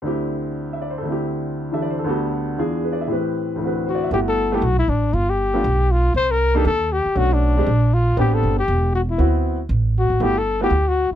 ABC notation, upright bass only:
X:1
M:4/4
L:1/8
Q:"Swing" 1/4=236
K:G
V:1 name="Upright bass" clef=bass
z8 | z8 | z8 | z8 |
G,,,4 B,,,2 A,,,2 | G,,,4 B,,,4 | C,,4 _E,,3 z | B,,,4 _B,,,4 |
A,,,2 G,,,2 E,,,4 | D,,4 A,,,3 A,,, | G,,,4 D,,3 z |]